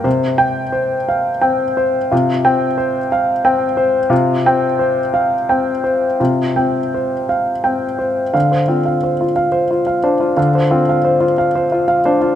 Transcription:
0.04 C3 C5
0.38 G5
0.72 C5
1.09 F5
1.41 C4 G5
1.77 C5
2.11 C3 F4
2.45 C4 G5
2.78 C5
3.12 F5
3.45 C4 G5
3.77 C5
4.10 C3 F4
4.46 C4 G5
4.79 C5
5.14 F5
5.49 C4 G5
5.84 C5
6.20 C3 F4
6.56 C4 G5
6.94 C5
7.29 F5
7.64 C4 G5
7.99 C5
8.34 D3 F5
8.52 C5
8.68 C4 F4
8.86 F5
9.04 C5
9.21 F4
9.36 F5
9.52 C5
9.71 F4
9.87 F5
10.04 D4 C5
10.20 F4
10.37 D3 F5
10.55 C5
10.71 C4 F4
10.89 F5
11.05 C5
11.20 F4
11.38 F5
11.55 C5
11.72 F4
11.88 F5
12.05 D4 C5
12.22 F4

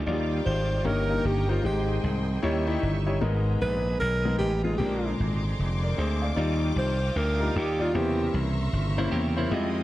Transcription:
0.06 D#2 D#3 F#3 G3 D#4 F4 D5 F5 G5 D6
0.11 G3
0.46 G#1 C5
0.85 G1 G2 D#3 A#3 C#4 D#4 G4 A#4 C#5 G5 A#5 C#6
1.09 A#3 D#4 G4 A#4
1.25 G1 G4
1.49 A#3 D#4 F4 G4 C5
1.64 G#1 G#2 D#3 G#3 C4 D#4 G4 C5 D#5 C6
2.04 C2
2.43 D#2 D#3 G3 C#4 D#4 E4 C#5 E5 C#6
2.67 G3 D#4 E4 G4
2.83 G1
3.06 G3 D#4 E4 C#5
3.21 G#1 G#2 G#3 B3 D#4 A#4 A#5
3.61 A#1 B4
3.99 B1 A#4
4.25 G#3 B3 D#4 A#4
4.38 A1 G4
4.64 G#3 B3 D#4 F4 G#4
4.78 A#1 A#2 D3 G#3 C4 C#4 G4 A#4 C6 D6
4.85 D4
5.20 G#1
5.59 F1
5.83 A#4 D5
5.97 D2 G#4 C5
6.22 D5 F5
6.36 D#2 D#3 G3 D#4 F4 D5 F5 G5
6.76 C2 C5
7.16 D2 A#4
7.40 G3 D#4 F4 A#4
7.56 D#2 G4
7.80 G3 D#4 F4 D5
7.94 E2 C3 C#3 E3 A#3 C#4 E4 G4 C5 E5 A#5 C6 C#6
8.34 C2
8.73 G1
8.98 G3 A#3 C#4 E4 C5
9.12 E2 A#3 G4
9.37 G3 A#3 C#4 E4 C5
9.51 F2 F3 G#3 D#4 F4 G4 D#5 F5 G5 D#6

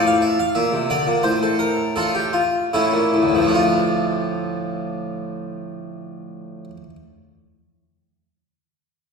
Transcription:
Already playing: A2
0.07 F5
0.22 E5
0.39 F5
0.55 A#2 E5
0.72 C3
0.90 D3 D5
1.07 A#2
1.23 A2 C5
1.43 A4
1.59 A#4
1.96 D4 F4 A4
2.15 G4
2.33 F4
2.73 A2 A3 C#4 E4
2.92 A#2
3.14 A2
3.23 D2
3.29 A2
3.35 G2 F3
3.42 A3
3.48 D4
3.54 F4

